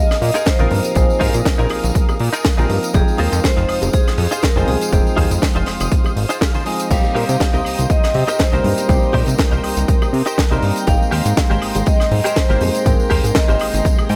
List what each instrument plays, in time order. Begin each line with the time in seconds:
Already playing: tine electric piano F3 A#3 C4 D#4 G#4, analog synth pad A#4 F5 D#6, vibraphone D#5
0.11 snare, tambourine, high woodblock
0.21 analog synth bass A#2, open hi-hat, low conga
0.34 clean electric guitar D#4 F4 G#4 A#4, closed hi-hat, tambourine, high bongo
0.46 vibraphone C5, kick, snare, closed hi-hat, tambourine
0.59 analog synth bass A#1, tine electric piano F3 A#3 C4 D#4 A#4, clean electric guitar D#4 F4 G#4 A#4, tambourine, high conga
0.71 analog synth bass G2, open hi-hat, low conga
0.84 muted clean electric guitar stroke, closed hi-hat, tambourine, high bongo
0.95 analog synth bass A#1, tine electric piano F3 A#3 C4 D#4 G#4, vibraphone C5, kick, closed hi-hat, tambourine, low conga
1.10 tambourine
1.20 analog synth bass G#2, clean electric guitar D#4 F4 G#4 A#4, vibraphone A#4, kick, open hi-hat, high bongo
1.34 analog synth bass A#2, closed hi-hat, tambourine
1.45 muted clean electric guitar stroke, kick, snare, closed hi-hat, tambourine
1.58 analog synth bass A#1, clean electric guitar D#4 F4 G#4 A#4, tambourine
1.60 tambourine
1.70 analog synth bass A#1, open hi-hat, high bongo, high woodblock
1.84 analog synth bass A#1, closed hi-hat, tambourine, high conga
1.95 kick, closed hi-hat, tambourine, low conga
2.09 tambourine, high bongo, high woodblock
2.19 analog synth bass A#2, open hi-hat
2.33 clean electric guitar D#4 F4 G#4 A#4, closed hi-hat, tambourine
2.44 kick, snare, closed hi-hat, tambourine
2.57 analog synth bass A#1, tine electric piano F3 A#3 C4 D#4 A#4, clean electric guitar D#4 F4 G#4 A#4, tambourine, high bongo, high conga
2.70 analog synth bass G2, open hi-hat
2.82 muted clean electric guitar stroke, closed hi-hat, tambourine
2.93 analog synth bass F1, tine electric piano F3 G#3 C4 D#4 G5, vibraphone G#4, analog synth pad C5 F5, kick, closed hi-hat, tambourine, high bongo, low conga
3.08 tambourine
3.18 analog synth bass D#2, clean electric guitar D#4 F4 G#4 C5, vibraphone A#4, open hi-hat
3.32 analog synth bass F2, closed hi-hat, tambourine
3.43 vibraphone C5, kick, snare, closed hi-hat, tambourine, high bongo
3.45 tambourine
3.57 analog synth bass F1, clean electric guitar D#4 F4 G#4 C5, tambourine
3.68 analog synth bass F1, open hi-hat, high woodblock
3.82 analog synth bass F1, closed hi-hat, tambourine, high bongo, high conga
3.93 vibraphone G#4, kick, closed hi-hat, tambourine
4.07 snare, tambourine, high woodblock
4.18 analog synth bass F2, vibraphone G#4, open hi-hat, low conga
4.31 clean electric guitar D#4 F4 G#4 C5, closed hi-hat, tambourine, high bongo
4.42 vibraphone A#4, kick, snare, closed hi-hat, tambourine
4.56 analog synth bass F1, tine electric piano F3 G#3 C4 D#4 G#4, clean electric guitar D#4 F4 G#4 C5, tambourine, high conga
4.67 analog synth bass C2, vibraphone G#4, open hi-hat, high bongo, low conga
4.81 muted clean electric guitar stroke, closed hi-hat, tambourine
4.92 analog synth bass F1, tine electric piano F3 G#3 C4 D#4 G5, kick, closed hi-hat, tambourine, low conga
5.07 tambourine
5.17 analog synth bass D#2, clean electric guitar D#4 F4 G#4 C5, kick, open hi-hat, high bongo
5.31 analog synth bass F2, closed hi-hat, tambourine, high conga
5.42 kick, snare, closed hi-hat, tambourine
5.55 analog synth bass F1, clean electric guitar D#4 F4 G#4 C5, tambourine, high bongo
5.66 analog synth bass F1, snare, open hi-hat, high woodblock
5.80 analog synth bass F1, closed hi-hat, tambourine, high conga, high woodblock
5.91 kick, closed hi-hat, tambourine, low conga
6.04 tambourine, high bongo, high woodblock
6.16 analog synth bass G#1, open hi-hat
6.29 clean electric guitar D#4 F4 G#4 C5, closed hi-hat, tambourine
6.41 clean electric guitar F5, kick, snare, closed hi-hat, tambourine, high bongo
6.54 clean electric guitar D#4 F4 G#4 C5, tambourine, high conga
6.65 tine electric piano F3 G#3 C4 D#4 G#4, clean electric guitar D#5, open hi-hat
6.79 muted clean electric guitar stroke, closed hi-hat, tambourine
6.90 analog synth bass C2, tine electric piano G3 A#3 C4 D#4 G4, vibraphone F5, analog synth pad G5 A#5, kick, closed hi-hat, tambourine, crash, low conga
7.04 tambourine, high bongo
7.15 analog synth bass A#2, clean electric guitar D#4 G4 A#4 C5, open hi-hat
7.29 analog synth bass C3, closed hi-hat, tambourine
7.40 kick, snare, closed hi-hat, tambourine, high bongo
7.53 analog synth bass C2, clean electric guitar D#4 G4 A#4 D#5, tambourine
7.65 analog synth bass C2, open hi-hat, high woodblock
7.78 analog synth bass C2, closed hi-hat, tambourine, high conga
7.90 vibraphone D#5, kick, closed hi-hat, tambourine, high bongo
8.03 snare, tambourine, high woodblock
8.14 analog synth bass C3, open hi-hat, low conga
8.28 clean electric guitar D#4 G4 A#4 C5, closed hi-hat, tambourine, high bongo
8.39 vibraphone C5, kick, snare, closed hi-hat, tambourine
8.52 analog synth bass C2, tine electric piano G3 A#3 C4 D#4 A#4, clean electric guitar D#4 G4 A#4 C5, tambourine, high conga
8.64 analog synth bass G2, open hi-hat, low conga
8.77 muted clean electric guitar stroke, closed hi-hat, tambourine, high bongo
8.88 analog synth bass C2, tine electric piano G3 A#3 C4 D#4 G4, vibraphone C5, kick, closed hi-hat, tambourine, low conga
9.02 tambourine
9.13 analog synth bass A#2, clean electric guitar D#4 G4 A#4 C5, vibraphone A#4, kick, open hi-hat, high bongo
9.26 analog synth bass C3, closed hi-hat, tambourine
9.29 tambourine
9.38 kick, snare, closed hi-hat, tambourine
9.51 analog synth bass C2, clean electric guitar D#4 G4 A#4 C5, tambourine
9.64 analog synth bass C2, open hi-hat, high bongo, high woodblock
9.77 analog synth bass C2, closed hi-hat, tambourine, high conga
9.88 kick, closed hi-hat, tambourine, low conga
10.02 tambourine, high bongo, high woodblock
10.13 analog synth bass C3, open hi-hat
10.26 clean electric guitar D#4 G4 A#4 C5, closed hi-hat, tambourine
10.38 kick, snare, closed hi-hat, tambourine
10.50 analog synth bass C2, tine electric piano G3 A#3 C4 D#4 A#4, clean electric guitar D#4 G4 A#4 C5, tambourine, high bongo, high conga
10.62 analog synth bass G2, open hi-hat
10.76 muted clean electric guitar stroke, closed hi-hat, tambourine
10.81 vibraphone G5
10.87 analog synth bass G#1, tine electric piano G#3 A#3 C4 D#4 G5, analog synth pad G#3 G5 C6, vibraphone F5, kick, closed hi-hat, tambourine, high bongo, low conga
11.01 tambourine
11.02 tambourine
11.11 analog synth bass D#2, clean electric guitar G4 G#4 A#4 C5, open hi-hat
11.25 analog synth bass G#2, closed hi-hat, tambourine
11.36 muted clean electric guitar stroke, kick, snare, closed hi-hat, tambourine, high bongo
11.50 analog synth bass G#1, clean electric guitar G4 G#4 A#4 C5, tambourine
11.62 analog synth bass G#1, open hi-hat, high woodblock
11.75 analog synth bass G#1, closed hi-hat, tambourine, high bongo, high conga
11.86 vibraphone D#5, kick, closed hi-hat, tambourine
12.00 snare, tambourine, high woodblock
12.11 analog synth bass G#2, open hi-hat, low conga
12.24 clean electric guitar G4 G#4 A#4 C5, closed hi-hat, tambourine, high bongo
12.36 vibraphone C5, kick, snare, closed hi-hat, tambourine
12.49 analog synth bass G#1, tine electric piano G#3 A#3 C4 D#4, clean electric guitar G4 G#4 A#4 C5, tambourine, high conga
12.61 analog synth bass F2, open hi-hat, high bongo, low conga
12.74 muted clean electric guitar stroke, closed hi-hat, tambourine
12.85 analog synth bass G#1, tine electric piano G#3 A#3 C4 D#4 G5, vibraphone A#4, kick, closed hi-hat, tambourine, low conga
12.99 tambourine
13.10 analog synth bass D#2, clean electric guitar G4 G#4 A#4 C5, kick, open hi-hat, high bongo
13.24 analog synth bass G#2, closed hi-hat, tambourine
13.35 vibraphone D#5, kick, snare, closed hi-hat, tambourine
13.48 analog synth bass G#1, clean electric guitar G4 G#4 A#4 C5, tambourine, high bongo
13.59 analog synth bass G#1, open hi-hat, high woodblock
13.73 analog synth bass G#1, closed hi-hat, tambourine, high conga
13.75 tambourine
13.84 kick, closed hi-hat, tambourine, low conga
13.86 tambourine
13.98 tambourine, high bongo, high woodblock
14.09 analog synth bass G#2, clean electric guitar G5, open hi-hat